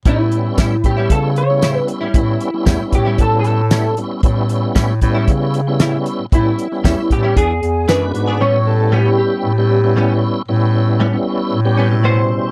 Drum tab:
HH |xxxxxxxx|xxxxxxxx|xxxxxxxx|xxxxxxxx|
TB |--x---x-|--x---x-|--x---x-|--x---x-|
SD |--o---o-|--o---o-|--o---o-|--o---o-|
BD |o-ooo---|o-ooo---|o-ooo---|o-ooo---|

HH |--------|--------|
TB |--------|--------|
SD |--------|--------|
BD |--------|--------|